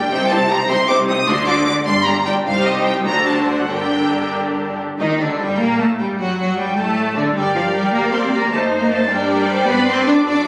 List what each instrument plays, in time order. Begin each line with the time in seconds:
Already playing: viola section G3 D4, violin section D5
0.10 double bass section C2, cello section C3, viola section C4 D#4, violin section G4 C5 G5
0.29 viola section C4 D#4, violin section G4 C5 A5
0.49 viola section C4 D#4, violin section G4 C5 A#5
0.67 double bass section C2, cello section C3, viola section C4 D#4, violin section G4 C5 C6
0.87 viola section C4 D#4, violin section G4 C5 D6
1.07 viola section C4 D#4, violin section G4 C5 D#6
1.26 double bass section D2, cello section D3, viola section A3 D4, violin section F#4 D5 C6
1.46 viola section A3 D4, violin section F#4 D5 D6
1.66 viola section A3 D4, violin section F#4 D5 D6
1.86 double bass section G1, cello section G2, viola section G3 D4, violin section G4 D5 C6
2.05 viola section G3 D4, violin section G4 D5 A#5
2.25 viola section G3 D4, violin section G4 D5 G5
2.45 double bass section C2, cello section C2, viola section G3 D#4, violin section G4 C5 F5
2.65 violin section D#5
2.85 violin section G5
3.06 double bass section D2, cello section D2, viola section D3 D4, violin section F#4 C5 A#5
3.27 violin section A5
3.48 violin section F#5
3.70 double bass section G1, cello section G2, viola section D3 D4, violin section G4 A#4 G5
4.99 double bass section D#2, cello section D#3, viola section D#3, violin section D#4 D#5
5.19 double bass section D2, cello section D3, viola section D3, violin section D4 D5
5.39 double bass section G2, cello section G3, violin section G3 G5, viola section G3
5.59 double bass section A#2, cello section A#3, violin section A#3 A#5, viola section A#3
5.79 double bass section A2, violin section A3 A5, cello section A3, viola section A3
5.99 double bass section G2, cello section G3, violin section G3 G5, viola section G3
6.19 double bass section F#2, cello section F#3, viola section F#3, violin section F#4 F#5
6.38 double bass section F#2, cello section F#3, viola section F#3, violin section F#4 F#5
6.57 double bass section G2, viola section G3, violin section G3 G5, cello section G3
6.77 double bass section A2, cello section A3, viola section A3, violin section A3 A5
7.16 double bass section D2, cello section D3, viola section D3, violin section D4 D5
7.35 double bass section G2, cello section G3, viola section G4 A#4, violin section D5 G5
7.55 cello section F3, violin section F5
7.73 cello section G3, violin section G5
7.93 double bass section D2, cello section A#3, violin section D5 A#5
8.12 cello section C4, violin section C6
8.32 cello section A#3, violin section A#5
8.51 double bass section F#2, cello section A3, viola section D#4 C5, violin section C5 A5
8.81 cello section A#3, violin section A#5
8.90 cello section A3, violin section A5
9.09 double bass section G2, cello section G3, viola section D4 A#4, violin section D5 G5
9.29 viola section A#4
9.49 viola section C5
9.68 double bass section G2, cello section B3, viola section D4 B4, violin section B5
9.87 cello section C4, violin section C6
10.06 cello section D4, violin section D6
10.26 double bass section F#2, cello section D4, viola section F#4 A4, violin section D5 D6